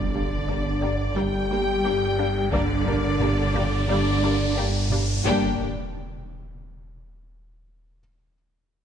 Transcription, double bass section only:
Already playing: G1
0.48 G1
1.16 G1
1.84 G1
2.52 G1
3.20 G1
3.88 G1
4.57 G1
5.25 G1

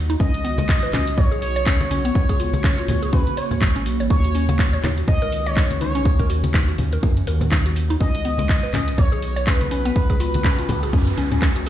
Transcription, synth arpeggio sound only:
0.10 D#4
0.20 C#4
0.44 B3
0.58 G#3
0.83 B4
0.93 C#4
1.18 C#5
1.32 G#4
1.56 C#5
1.66 C#4
1.91 C#4
2.05 B3
2.29 G#4
2.40 F4
2.64 C#4
2.78 F4
3.02 G#4
3.13 C#4
3.37 C#5
3.62 G#3
3.76 C#4
4.00 C#5
4.10 D#4
4.35 C#4
4.49 A#3
4.73 C#5
4.84 D#4
5.08 D#5
5.22 A#4
5.47 D#5
5.57 D#4
5.81 D#4
5.95 C#4
6.19 A#4
6.30 F#4
6.54 D#4
6.68 F#4
6.93 A#4
7.03 D#4
7.27 A#4
7.52 D#4
7.66 F#4
7.90 D#4
8.00 C#4
8.25 B3
8.39 G#3
8.63 B4
8.74 C#4
8.98 C#5
9.12 G#4
9.36 C#5
9.47 C#4
9.71 C#4
9.85 B3
10.10 G#4
10.20 F4
10.44 C#4
10.59 F4
10.83 G#4
10.93 C#4
11.18 C#4
11.32 C#4
11.42 C#4
11.56 F#4

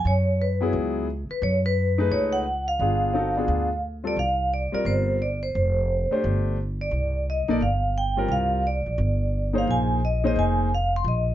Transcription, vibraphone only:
0.07 C#5
0.42 B4
1.31 B4
1.43 C#5
1.66 B4
2.12 C#5
2.33 F#5
2.68 F5
4.07 D5
4.19 F5
4.54 D5
4.75 D5
4.86 C5
5.22 D5
5.43 C5
5.55 C5
6.81 D5
7.30 D#5
7.51 D5
7.62 F5
7.98 G5
8.32 F5
8.67 D5
9.58 F5
9.71 G#5
10.05 D#5
10.27 D#5
10.39 G#5
10.75 F5
10.96 C6
11.08 D#5

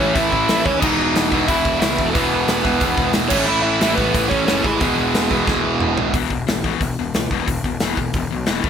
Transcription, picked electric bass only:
0.00 A1
0.15 A1
0.33 A1
0.49 A1
0.65 D#2
0.83 E1
1.17 E1
1.32 E1
1.49 E1
1.65 E1
1.83 C#2
1.99 E1
2.15 E1
2.32 E1
2.48 E1
2.65 E1
2.82 E1
2.98 E1
3.16 E1
3.32 A1
3.49 A1
3.81 A1
3.99 A1
4.14 A1
4.31 A1
4.49 F#1
4.65 A1
4.82 E1
4.98 E1
5.16 E1
5.31 E1
5.48 E1
5.65 E1
5.82 E1
5.98 E1
6.14 E1
6.31 E1
6.48 A1
6.81 E1
6.99 E1
7.15 C#2
7.31 E1
7.48 E1
7.64 E1
7.82 E1
7.97 E1
8.14 E1
8.34 B1
8.48 E1
8.64 A1

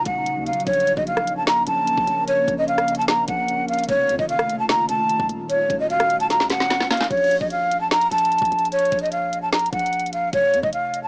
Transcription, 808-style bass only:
0.06 D#1
0.36 D#2
0.51 D#1
0.67 A#1
0.97 A#1
1.67 A#1
1.98 A#1
2.07 A#1
2.48 A#1
3.28 A#1
3.89 F1
4.09 F2
4.19 F1
4.89 F1
5.20 F1
5.29 D#1
5.70 D#1
7.11 A#1
7.41 A#1
8.11 A#1
8.42 A#1
8.52 A#1
8.92 A#1
9.73 A#1
10.33 F1
10.53 F2
10.63 F1

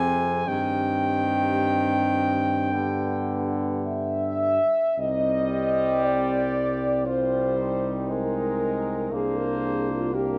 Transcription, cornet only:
Already playing: G#5
0.48 G5
4.98 D#4
5.52 G4
7.06 F4
7.58 D#4
9.13 C5
10.14 A#4

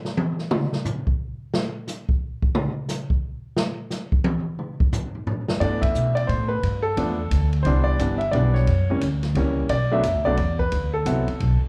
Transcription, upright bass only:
5.60 G2
5.82 muted upright bass stroke
5.95 B2
6.29 A2
6.63 G2
6.97 E2
7.31 D2
7.65 C2
7.99 G1
8.32 B1
8.67 F#2
9.01 D2
9.35 C#2
9.69 B1
10.03 F#2
10.14 D2
10.26 B1
10.38 E2
10.72 D2
11.06 C2
11.28 muted upright bass stroke
11.40 B1
11.62 muted upright bass stroke

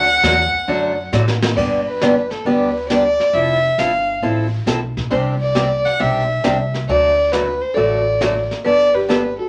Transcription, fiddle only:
Already playing: F#5
1.56 D5
1.86 B4
2.31 A4
2.46 B4
2.89 D5
3.34 E5
3.79 F5
5.11 C5
5.41 D5
5.86 F#5
6.00 E5
6.88 D5
7.32 B4
7.61 C5
7.75 D5
8.65 D5
8.95 B4
9.08 B4
9.39 A4

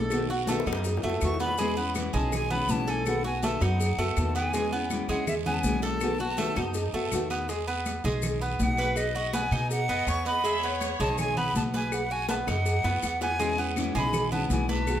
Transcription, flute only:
1.24 C#6
1.42 B5
2.15 A5
2.34 G#5
2.53 B5
2.71 A5
2.90 G#5
3.08 F#5
3.26 G#5
3.44 A5
3.63 F#5
4.19 A5
4.37 G#5
5.10 F#5
5.28 E5
5.47 G#5
5.54 A5
5.61 G#5
5.83 A5
8.61 F#5
8.97 D#5
9.34 G#5
9.71 F#5
10.08 C#6
10.28 B5
11.01 A5
11.20 G#5
11.38 B5
11.57 A5
11.76 G#5
11.94 F#5
12.12 G#5
12.29 A5
12.48 F#5
13.04 F#5
13.23 G#5
13.98 B5
14.34 A5
14.52 G#5
14.70 A5

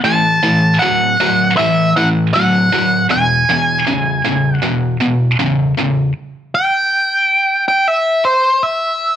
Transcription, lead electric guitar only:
0.04 A5
0.79 F#5
1.57 E5
1.96 F#5
2.34 F#5
3.11 G#5
4.56 F#5
6.55 G5
7.68 G5
7.88 E5
8.25 C5
8.63 E5

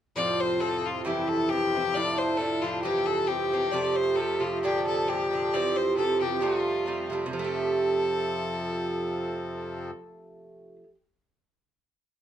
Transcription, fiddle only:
0.16 D5
0.40 C5
0.61 A4
0.85 F4
1.05 G4
1.28 A4
1.49 G4
1.94 D5
2.18 C5
2.38 A4
2.62 F4
2.83 G4
3.06 A4
3.27 G4
3.71 D5
3.91 D5
3.96 C5
4.16 A4
4.40 F4
4.62 G4
4.87 A4
5.08 G4
5.53 D5
5.76 C5
5.97 A4
6.21 G4
6.43 F4
7.33 A4

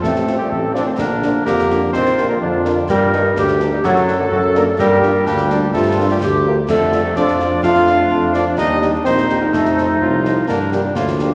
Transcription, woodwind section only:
0.05 C4
1.00 D4
1.46 G4
1.93 F4
2.89 A#4
3.39 G4
3.85 A4
4.80 A#4
5.26 D4
5.76 F4
6.23 G4
6.71 A4
7.16 F4
7.62 D4
9.07 D#4
10.48 D4
10.95 A#3

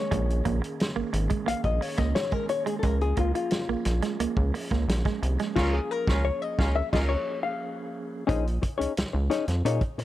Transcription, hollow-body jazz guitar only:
Already playing: C#5
1.48 F5
1.65 D#5
1.82 C#5
1.98 D#5
2.15 C#5
2.33 A#4
2.49 C#5
2.67 G#4
2.79 A4
2.83 A#4
3.02 G#4
3.19 F4
3.35 F4
5.56 F4
5.73 G#4
5.91 A#4
6.25 C#5
6.42 D#5
6.76 E5
6.93 D#5
7.09 C#5
7.43 F5
8.27 C#4 D#4 G#4 C5
8.62 muted hollow-body jazz guitar stroke
8.78 C#4 D#4 G#4 C#5
9.13 muted hollow-body jazz guitar stroke
9.30 C#4 D#4 G#4 C#5
9.48 muted hollow-body jazz guitar stroke
9.65 C#4 D#4 G#4 C#5
9.98 muted hollow-body jazz guitar stroke

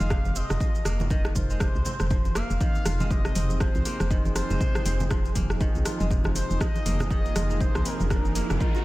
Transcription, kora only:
Already playing: D#3 A#3 C4 F4
0.00 G#3
0.10 C3
0.35 C4
0.60 F3
0.85 A#3
1.10 D#3
1.36 F4
1.50 G#3
1.61 C3
1.86 C4
2.11 F3
2.36 A#3
2.61 D#3
2.86 F4
3.00 G#3
3.11 C3
3.35 C4
3.61 F3
3.85 A#3
4.11 D#3
4.35 F4
4.50 G#3
4.60 C3
4.86 C4
5.10 F3
5.36 A#3
5.61 D#3
5.86 F4
6.00 G#3
6.11 C3
6.36 C4
6.61 F3
6.86 A#3
7.10 D#3
7.35 F4
7.50 G#3
7.60 C3
7.86 C4
8.11 F3
8.36 A#3
8.61 D#3

